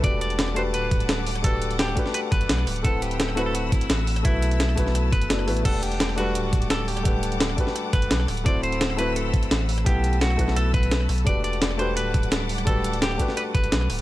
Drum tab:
CC |----------------|----------------|----------------|----------------|
HH |x-xxx-x-x-xxx-ox|x-xxx-x-x-xxx-ox|x-xxx-x-x-xxx-ox|x-xxx-x-x-xxx-ox|
SD |----or------o--r|----or-or---orr-|----or------o--r|----or-or---orr-|
BD |o---------o-----|o-----o---o-----|o---------o-----|o-----o---o-----|

CC |x---------------|----------------|----------------|----------------|
HH |x-xxx-x-x-xxx-ox|x-xxx-x-x-xxx-ox|x-xxx-x-x-xxx-ox|x-xxx-x-x-xxx-ox|
SD |----or------o--r|----or-or---orr-|----or------o--r|----or-or---orr-|
BD |o---------o-----|o-----o---o-----|o---------o-----|o-----o---o-----|

CC |----------------|----------------|
HH |x-xxx-x-x-xxx-ox|x-xxx-x-x-xxx-o-|
SD |----or------o--r|----or-or---orr-|
BD |o---------o-----|o-----o---o-----|